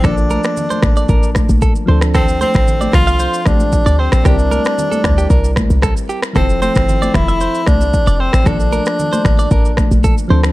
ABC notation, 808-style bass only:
X:1
M:4/4
L:1/16
Q:1/4=114
K:Bblyd
V:1 name="808-style bass" clef=bass
B,,,3 z3 A,,,2 A,,,3 B,,,2 z D,,2- | D,,3 A,,,3 C,,3 z A,,,3 D,,2 B,,, | C,,3 z3 D,,2 C,,3 C,,2 z3 | F,,,3 G,,,3 F,,,3 z C,,3 F,,,2 A,,, |
B,,,3 z3 A,,,2 A,,,3 B,,,2 z D,,2 |]